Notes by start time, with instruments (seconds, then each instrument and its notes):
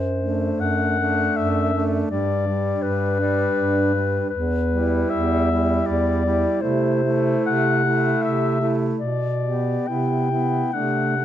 Already playing: bass clarinet F#2, clarinet C5
0.17 tenor saxophone A3, alto saxophone D4
0.60 bass clarinet F#2, clarinet F#5
1.00 tenor saxophone A3, alto saxophone D4
1.36 bass clarinet F#2, clarinet E5
1.73 tenor saxophone A3, alto saxophone D4
2.09 bass clarinet G2, tenor saxophone G3, alto saxophone D4, clarinet D5
2.47 tenor saxophone G3, alto saxophone D4
2.82 bass clarinet G2, clarinet B4
3.20 tenor saxophone G3, alto saxophone D4
3.56 bass clarinet G2
3.93 tenor saxophone G3, alto saxophone D4
4.30 bass clarinet E2, clarinet B4
4.71 tenor saxophone G3, alto saxophone E4
5.10 bass clarinet E2, clarinet E5
5.51 tenor saxophone G3, alto saxophone E4
5.87 bass clarinet E2, clarinet D5
6.26 tenor saxophone G3, alto saxophone E4
6.61 bass clarinet C3, tenor saxophone A3, alto saxophone E4, clarinet C5
7.03 tenor saxophone A3, alto saxophone E4
7.45 bass clarinet C3, clarinet F#5
7.85 tenor saxophone A3, alto saxophone E4
8.22 bass clarinet C3, clarinet E5
8.61 tenor saxophone A3, alto saxophone E4
8.99 bass clarinet B2, clarinet D5
9.42 tenor saxophone B3, alto saxophone G4
9.87 bass clarinet C3, tenor saxophone B3, alto saxophone E4, clarinet G5
10.30 tenor saxophone B3, alto saxophone E4
10.73 bass clarinet C3, tenor saxophone A3, alto saxophone D4, clarinet F#5
11.17 tenor saxophone A3, alto saxophone D4